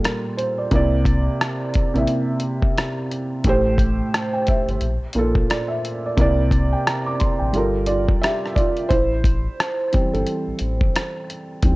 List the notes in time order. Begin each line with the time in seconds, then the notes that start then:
Already playing: A#2 G3 F4 A4
0.04 A#4, cross-stick, closed hi-hat
0.37 C5, closed hi-hat
0.58 D5
0.71 C2 C3 A#3 E4, kick, closed hi-hat
0.75 D5
1.05 kick, closed hi-hat
1.41 cross-stick, closed hi-hat
1.74 kick, closed hi-hat
1.94 A1 C3 A#3 E4, closed hi-hat
1.98 E5
2.08 closed hi-hat
2.40 closed hi-hat
2.62 kick
2.78 cross-stick, closed hi-hat
3.12 closed hi-hat
3.44 A1 A2 A3 G4, kick, closed hi-hat
3.49 C5
3.78 kick, closed hi-hat
4.14 cross-stick, closed hi-hat
4.33 G5
4.47 E5, kick, closed hi-hat
4.67 G1 C5, closed hi-hat
4.81 A#1, closed hi-hat
5.01 A#1
5.13 A#1 A#2 A#3, closed hi-hat
5.18 F4 A4
5.35 kick
5.50 D5, cross-stick, closed hi-hat
5.68 E5
5.85 closed hi-hat
6.06 D5
6.17 C2 C3 A#3 E4, kick, closed hi-hat
6.21 D5
6.51 kick, closed hi-hat
6.73 G5
6.87 A#5, cross-stick, closed hi-hat
7.06 D6
7.20 C6, kick, closed hi-hat
7.39 A1 G5
7.53 G1 G3 F4 A4, closed hi-hat
7.57 A#4
7.86 F4 D5, closed hi-hat
8.08 kick
8.21 G4 E5, cross-stick, closed hi-hat
8.46 cross-stick
8.55 F4 D5, kick, closed hi-hat
8.77 closed hi-hat
8.89 A1 E4 C5, kick, closed hi-hat
9.24 kick, closed hi-hat
9.60 cross-stick, closed hi-hat
9.92 E3 G3 C4, kick, closed hi-hat
10.13 G1 C4 A4, closed hi-hat
10.27 closed hi-hat
10.47 A1
10.59 A1, closed hi-hat
10.81 kick
10.96 cross-stick, closed hi-hat
11.30 closed hi-hat
11.63 D2 E3 G3 C4, kick, closed hi-hat